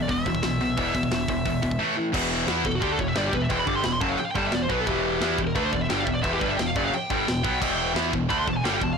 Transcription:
0.02 lead electric guitar D5
0.08 picked electric bass E1, distorted electric guitar E2 B2, lead electric guitar E5, kick, open hi-hat
0.26 picked electric bass E1, distorted electric guitar E2 B2, kick, open hi-hat
0.35 kick
0.42 picked electric bass B1, distorted electric guitar E2 B2, snare, open hi-hat
0.61 distorted electric guitar E2 B2, open hi-hat
0.77 picked electric bass E1, distorted electric guitar E2 B2 E3, kick, open hi-hat
0.94 picked electric bass E1, distorted electric guitar E2 B2, kick, open hi-hat
1.03 kick
1.11 picked electric bass E1, distorted electric guitar E2 B2, snare, open hi-hat
1.28 picked electric bass E1, distorted electric guitar E2 B2, kick, open hi-hat
1.45 picked electric bass E1, distorted electric guitar E2 B2, kick, open hi-hat
1.62 picked electric bass E1, distorted electric guitar E2 B2, kick, open hi-hat
1.71 kick
1.79 distorted electric guitar A2 E3 A3
1.97 distorted electric guitar A2 E3
2.12 picked electric bass E1, distorted electric guitar E2 B2 E3, kick, crash, china
2.47 picked electric bass E2, distorted electric guitar E3 B3 E4, snare, china
2.65 picked electric bass E1, distorted electric guitar E2 B2, lead electric guitar A4, kick
2.75 lead electric guitar F#4
2.81 picked electric bass D2, distorted electric guitar D3 A3 D4, lead electric guitar G4, kick, china
2.92 lead electric guitar A4
2.98 picked electric bass E1, distorted electric guitar E2 B2, lead electric guitar C#5, kick
3.08 lead electric guitar E5
3.15 picked electric bass G1, distorted electric guitar G2 D3 G3, lead electric guitar D5, snare, china
3.26 lead electric guitar G4
3.33 picked electric bass E1, distorted electric guitar E2 B2, lead electric guitar B4, kick
3.42 lead electric guitar E5
3.49 picked electric bass E1, distorted electric guitar E2 B2 E3, lead electric guitar G5, kick, china
3.59 lead electric guitar B5
3.66 picked electric bass G1, distorted electric guitar G2 D3 G3, lead electric guitar D6, kick
3.76 lead electric guitar C6
3.83 picked electric bass E1, distorted electric guitar E2 B2, lead electric guitar B5, snare, china
3.92 lead electric guitar C6
4.01 picked electric bass F#1, distorted electric guitar F#2 C#3 F#3, lead electric guitar A5, kick
4.09 lead electric guitar F5
4.18 lead electric guitar G5, muted distorted electric guitar stroke, china
4.26 lead electric guitar F5
4.31 lead electric guitar G5
4.35 picked electric bass G1, distorted electric guitar G2 D3 G3, lead electric guitar A5, kick
4.46 lead electric guitar E5
4.52 picked electric bass E1, distorted electric guitar E2 B2, lead electric guitar D5, snare, china
4.63 lead electric guitar C5
4.69 picked electric bass B1, distorted electric guitar B2 F#3 B3, lead electric guitar B4, kick
4.81 lead electric guitar A4
4.86 picked electric bass E1, distorted electric guitar E2 B2 E3, lead electric guitar G4, kick, china
5.21 picked electric bass E2, distorted electric guitar E3 B3 E4, snare, china
5.38 picked electric bass E1, distorted electric guitar E2 B2, kick
5.47 lead electric guitar A#4
5.55 picked electric bass D2, distorted electric guitar D3 A3 D4, lead electric guitar B4, kick, china
5.65 lead electric guitar C5
5.72 picked electric bass E1, distorted electric guitar E2 B2, lead electric guitar D5, kick
5.82 lead electric guitar E5
5.89 picked electric bass G1, distorted electric guitar G2 D3 G3, lead electric guitar G5, snare, china
5.99 lead electric guitar F5
6.05 picked electric bass E1, distorted electric guitar E2 B2, lead electric guitar E5, kick
6.15 lead electric guitar D5
6.22 picked electric bass E1, distorted electric guitar E2 B2 E3, lead electric guitar E5, kick, china
6.33 lead electric guitar G4
6.39 picked electric bass G1, distorted electric guitar G2 D3 G3, lead electric guitar B4, kick
6.48 lead electric guitar E5
6.57 picked electric bass E1, distorted electric guitar E2 B2, lead electric guitar G5, snare, china
6.67 lead electric guitar F5
6.75 picked electric bass F#1, distorted electric guitar F#2 C#3 F#3, lead electric guitar D5, kick
6.86 lead electric guitar F5
6.93 lead electric guitar G5, muted picked electric bass stroke, muted distorted electric guitar stroke, china
7.10 picked electric bass G1, distorted electric guitar G2 D3 G3, kick
7.28 picked electric bass E1, distorted electric guitar E2 B2, snare, china
7.43 picked electric bass B1, distorted electric guitar B2 F#3 B3, kick
7.61 picked electric bass E1, distorted electric guitar E2 B2 E3, kick, china, crash
7.95 picked electric bass E2, distorted electric guitar E3 B3 E4, snare, china
8.13 picked electric bass E1, distorted electric guitar E2 B2, kick
8.29 picked electric bass D2, distorted electric guitar D3 A3 D4, lead electric guitar B5, kick, china
8.39 lead electric guitar C6
8.47 picked electric bass E1, distorted electric guitar E2 B2, lead electric guitar A5, kick
8.57 lead electric guitar G#5
8.64 picked electric bass G1, distorted electric guitar G2 D3 G3, lead electric guitar G5, snare, china
8.73 lead electric guitar F5 G5
8.81 picked electric bass E1, distorted electric guitar E2 B2, lead electric guitar A5, kick
8.93 lead electric guitar F5

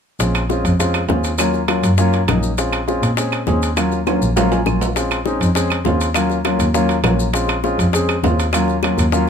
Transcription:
0.20 double bass A#1, grand piano G#3 C4 C#4 F4, high bongo, high timbale, maracas
0.35 high bongo, high timbale, claves, maracas
0.49 grand piano G#3 C4 C#4 F4, high bongo, low timbale, maracas
0.65 double bass F2, high bongo, high timbale, maracas
0.79 grand piano G#3 C4 C#4 F4, high bongo, high timbale, maracas
0.94 high bongo, high timbale, claves, maracas
1.09 double bass D#2, grand piano G#3 C4 C#4 F4, high bongo, low bongo, low timbale, maracas
1.24 high timbale, maracas
1.38 grand piano F#3 A#3 C#4 F4, high bongo, high timbale, claves, maracas
1.54 high bongo, maracas
1.68 grand piano F#3 A#3 C#4 F4, high bongo, high timbale, low timbale, claves, maracas
1.83 double bass F#2, high bongo, high timbale, maracas
1.98 grand piano F#3 A#3 C#4 F4, high bongo, maracas
2.13 high bongo, high timbale, maracas
2.28 double bass A#1, grand piano F#3 A#3 C#4 D#4, high bongo, low bongo, high timbale, low timbale, claves, maracas
2.43 maracas
2.58 grand piano G#3 C4 C#4 F4, high bongo, high timbale, maracas
2.73 high bongo, high timbale, claves, maracas
2.88 grand piano G#3 C4 C#4 F4, high bongo, low timbale, maracas
3.02 double bass A#2, high bongo, high timbale, maracas
3.17 grand piano G#3 C4 C#4 G#4, high bongo, high timbale, maracas
3.32 high bongo, high timbale, claves, maracas
3.47 double bass D#2, grand piano G#3 C4 C#4 G#4, high bongo, low bongo, low timbale, maracas
3.62 high timbale, maracas
3.76 grand piano F#3 A#3 C#4 F4, high bongo, high timbale, claves, maracas
3.92 high bongo, maracas
4.07 grand piano F#3 A#3 C#4 F4, high bongo, high timbale, claves, maracas
4.22 double bass A#1, high bongo, maracas
4.36 grand piano F#3 A#3 C#4 F4, high bongo, low timbale, maracas
4.51 grand piano G#5, high bongo, low timbale, maracas
4.66 double bass A#1, grand piano F#3 A#3 C#4 F4 F5, high bongo, low bongo, claves, maracas
4.81 low timbale, maracas
4.96 grand piano G#3 C4 C#4 F4, high bongo, high timbale, maracas
5.11 high bongo, high timbale, claves, maracas
5.26 grand piano G#3 C4 C#4 D#4, high bongo, low timbale, maracas
5.40 double bass F2, high bongo, high timbale, maracas
5.55 grand piano G#3 C4 C#4 G#4, high bongo, high timbale, maracas
5.70 high bongo, high timbale, claves, maracas
5.85 double bass D#2, grand piano G#3 C4 C#4 F4, high bongo, low bongo, low timbale, maracas
6.01 high timbale, maracas
6.14 grand piano F#3 A#3 C#4 F4, high bongo, high timbale, claves, maracas
6.30 high bongo, maracas
6.45 grand piano F#3 A#3 C#4 F4, high bongo, high timbale, low timbale, claves, maracas
6.59 double bass D#2, high bongo, high timbale, maracas
6.74 grand piano F#3 A#3 C#4 F4, high bongo, maracas
6.89 high bongo, high timbale, maracas
7.04 double bass A#1, grand piano F#3 A#3 C#4 F4, high bongo, low bongo, high timbale, low timbale, claves, maracas
7.19 maracas
7.33 grand piano G#3 C4 C#4 F4, high bongo, high timbale, maracas
7.48 high bongo, high timbale, claves, maracas
7.64 grand piano G#3 C4 C#4 F4, high bongo, low timbale, maracas
7.79 double bass F2, high bongo, high timbale, maracas
7.93 grand piano G#3 C4 C#4 G#4, high bongo, high timbale, maracas
8.09 high bongo, high timbale, claves, maracas
8.24 double bass D#2, grand piano G#3 C4 C#4 F4, high bongo, low bongo, low timbale, maracas
8.39 high timbale, maracas
8.53 grand piano F#3 A#3 C#4 F4, high bongo, high timbale, claves, maracas
8.68 high bongo, maracas
8.83 grand piano F#3 A#3 C#4 F4, high bongo, high timbale, low timbale, claves, maracas
8.98 double bass D#2, high bongo, high timbale, maracas
9.12 grand piano F#3 A#3 C#4 F4, high bongo, maracas

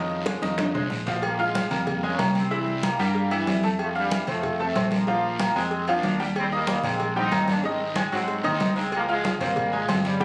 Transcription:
Already playing: fingered electric bass F2, trombone section C#3 F3, upright piano D#3 D#4 D#5
0.10 high bongo, high conga
0.26 upright piano G#3 G#4 C5, high bongo, high conga, high timbale, short guiro
0.42 fingered electric bass F2, upright piano D#3 D#4 D#5, high bongo, high conga, short guiro
0.58 high bongo, high conga, high timbale, long guiro
0.74 fingered electric bass C2, upright piano G#3 G#4 C5, low conga, high timbale
0.90 fingered electric bass A#1, high bongo, low bongo, short guiro
1.06 upright piano F3 F4 F5, high bongo, low conga, low timbale, short guiro
1.22 trombone section F3 A#3, cowbell, high conga, low agogo, long guiro
1.39 trombone section F3 G#3, upright piano F4 F5 F6, high conga
1.55 cowbell, high conga, low timbale, low agogo, short guiro
1.71 fingered electric bass F2, trombone section G3 A#3, upright piano A#3 A#4 A#5, high conga, low conga, low agogo, short guiro
1.87 cowbell, high conga, low conga, low agogo, long guiro
2.03 upright piano G#3 G#4 G#5, trombone section A#3 C#4, high conga
2.19 fingered electric bass C2, upright piano A#3 A#4 A#5, cowbell, high conga, low timbale, low agogo, short guiro
2.35 trombone section G3 C4, cowbell, high conga, low agogo, short guiro
2.51 upright piano E3 E4 E5, cowbell, high conga, long guiro
2.67 high conga
2.83 trombone section G3 A#3, upright piano A#3 A#4 A#5, cowbell, high conga, low timbale, low agogo, short guiro
2.99 fingered electric bass G2, upright piano G3 G4 G5, trombone section G3 A#3, low agogo, short guiro
3.15 cowbell, high conga, long guiro
3.31 upright piano E3 E4 E5, trombone section E3 G3, high conga, low agogo
3.47 fingered electric bass F2, cowbell, high conga, low timbale, low agogo, short guiro
3.63 upright piano A3 A4 A5, cowbell, high conga, short guiro
3.79 trombone section F3 A3, cowbell, high conga, low agogo, long guiro
3.95 trombone section E3 G3, upright piano D4 F5 F6, high conga
4.11 cowbell, high conga, low timbale, low agogo, short guiro
4.27 fingered electric bass F2, trombone section F3 A3, upright piano C4 C5 C6, high conga, low conga, low agogo, short guiro
4.43 cowbell, high conga, low conga, low agogo, long guiro
4.59 upright piano A3 A4 A5, trombone section A3 C4, high conga
4.75 fingered electric bass A#1, upright piano C4 C5 C6, cowbell, high conga, low timbale, low agogo, short guiro
4.91 trombone section F3 A#3, cowbell, high conga, low agogo, short guiro
5.07 upright piano F3 F4 F5, cowbell, high conga, long guiro
5.24 high conga
5.39 trombone section F3 A#3, upright piano A#3 A#4 A#5, cowbell, high conga, low timbale, low agogo, short guiro
5.55 fingered electric bass F2, upright piano G#3 G#4 G#5, trombone section G#3 C4, low agogo, short guiro
5.71 cowbell, high conga, long guiro
5.88 upright piano F3 F4 F5, trombone section A#3 D4, high conga, low agogo
6.03 fingered electric bass D#2, cowbell, high conga, low timbale, low agogo, short guiro
6.20 upright piano G3 G4 G5, cowbell, short guiro
6.36 trombone section G3 C4, cowbell, high conga, low agogo, long guiro
6.51 trombone section G3 A#3, upright piano D#4 D#5 D#6, high conga
6.67 cowbell, high conga, low timbale, low agogo, short guiro
6.84 fingered electric bass A#1, trombone section G#3 C4, upright piano A#3 A#4 A#5, high conga, low conga, low agogo, short guiro
6.99 cowbell, high conga, low agogo, long guiro
7.15 upright piano G3 G4 G5, trombone section C4 D#4, high conga
7.32 fingered electric bass G#1, upright piano A#3 A#4 A#5, cowbell, high conga, low timbale, low agogo, short guiro
7.48 trombone section A#3 D4, cowbell, high conga, low agogo, short guiro
7.60 trombone section C#4, cowbell
7.65 upright piano D#3 D#4 D#5, trombone section G#3 C4, long guiro
7.80 high conga
7.96 upright piano G#3 G#4 G#5, cowbell, high conga, low timbale, low agogo, short guiro
8.12 fingered electric bass G#2, upright piano F#3 F#4 F#5, trombone section G#3 C4, low agogo, short guiro
8.28 cowbell, high conga, long guiro
8.44 fingered electric bass D#2, upright piano D#3 D#4 D#5, trombone section C4 D#4, high conga, low agogo
8.60 fingered electric bass C#2, cowbell, high conga, low timbale, low agogo, short guiro
8.76 upright piano G#3 G#4 G#5, trombone section G#3 C4, cowbell, short guiro
8.92 trombone section F3 A#3, cowbell, high conga, low agogo, long guiro
9.08 trombone section F3 G#3, upright piano F4 F5 F6, high conga
9.24 cowbell, high conga, low timbale, low agogo, short guiro
9.40 fingered electric bass G#1, trombone section G3 A#3, upright piano C4 C5 C6, high conga, low conga, low agogo, short guiro
9.56 cowbell, high conga, low conga, low agogo, long guiro
9.72 trombone section F3 G#3, upright piano G#3 G#4 G#5, high conga
9.88 fingered electric bass G1, upright piano C4 C5 C6, cowbell, high conga, low timbale, low agogo, short guiro
10.05 trombone section C#3 G3, cowbell, high conga, low agogo, short guiro
10.20 upright piano G3 G4 G5, cowbell, high conga, long guiro

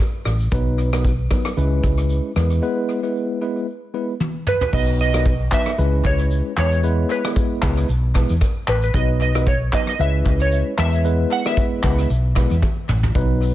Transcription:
0.25 fingered electric bass A1, cross-stick, shaker
0.40 shaker
0.52 fingered electric bass B1, tine electric piano F#3 B3 D#4 B4, kick, shaker
0.78 shaker
0.93 tine electric piano F#3 B3 D#4 B4, cross-stick, shaker
1.04 kick, shaker
1.31 tine electric piano F#3 B3 D#4 B4, kick, cross-stick, shaker
1.45 cross-stick, shaker
1.57 fingered electric bass C#2, tine electric piano G#3 C#4 E4 B4, shaker
1.83 fingered electric bass C#2, kick, shaker
1.98 shaker
2.10 shaker
2.36 fingered electric bass E2, tine electric piano G#3 B3 E4 B4, cross-stick, shaker
2.50 shaker
2.62 tine electric piano G#3 B3 E4 B4
3.03 tine electric piano G#3 B3 E4 B4
3.41 tine electric piano G#3 B3 E4 B4
3.94 tine electric piano G#3 B3 E4 B4
4.20 high tom
4.47 synth pluck B4, mid tom
4.61 synth pluck B4, floor tom
4.73 fingered electric bass B1, tine electric piano F#3 B3 D#4 B4, synth pluck D#5, kick, crash
5.00 synth pluck D#5, shaker
5.14 tine electric piano F#3 B3 D#4 B4, cross-stick, shaker
5.26 kick, shaker
5.52 tine electric piano F#3 B3 D#4 B4, synth pluck E5, kick, cross-stick, clap, shaker
5.66 cross-stick, shaker
5.78 fingered electric bass C#2, tine electric piano G#3 C#4 E4 B4, shaker
6.05 fingered electric bass C#2, synth pluck C#5, kick, shaker
6.19 shaker
6.31 shaker
6.57 fingered electric bass E2, tine electric piano G#3 B3 E4 B4, synth pluck C#5, cross-stick, clap, shaker
6.72 shaker
6.83 tine electric piano G#3 B3 E4 B4, shaker
7.10 synth pluck B4, shaker
7.24 tine electric piano G#3 B3 E4 B4, cross-stick, shaker
7.36 kick, shaker
7.62 fingered electric bass C#2, tine electric piano G#3 B3 E4 B4, kick, cross-stick, clap, shaker
7.77 shaker
7.89 fingered electric bass B1, shaker
8.15 tine electric piano G#3 B3 E4 B4, kick, cross-stick, shaker
8.29 fingered electric bass E2, shaker
8.41 kick, cross-stick, shaker
8.67 fingered electric bass A1, synth pluck B4, cross-stick, clap, shaker
8.82 synth pluck B4, shaker
8.94 fingered electric bass B1, tine electric piano F#3 B3 D#4 B4, synth pluck D#5, kick, shaker
9.21 synth pluck D#5, shaker
9.35 tine electric piano F#3 B3 D#4 B4, cross-stick, shaker
9.47 synth pluck C#5, kick, shaker
9.73 tine electric piano F#3 B3 D#4 B4, synth pluck D#5, kick, cross-stick, clap, shaker
9.87 synth pluck D#5, cross-stick, shaker
9.99 fingered electric bass C#2, tine electric piano G#3 C#4 E4 B4, synth pluck E5, shaker
10.25 fingered electric bass C#2, kick, shaker
10.40 synth pluck C#5, shaker
10.52 shaker
10.78 fingered electric bass E2, tine electric piano G#3 B3 E4 B4, synth pluck E5, cross-stick, clap, shaker
10.93 shaker
11.04 tine electric piano G#3 B3 E4 B4, shaker
11.31 synth pluck F#5, shaker
11.45 tine electric piano G#3 B3 E4 B4, synth pluck E5, cross-stick, shaker
11.57 kick, shaker
11.83 fingered electric bass C#2, tine electric piano G#3 B3 E4 B4, kick, cross-stick, clap, shaker
11.98 shaker
12.10 fingered electric bass B1, shaker
12.36 tine electric piano G#3 B3 E4 B4, kick, cross-stick, shaker
12.50 fingered electric bass E2, shaker
12.62 kick, high tom
12.89 fingered electric bass A1, mid tom
13.03 floor tom
13.15 fingered electric bass B1, tine electric piano F#3 B3 D#4 B4, kick, shaker
13.42 open hi-hat, shaker

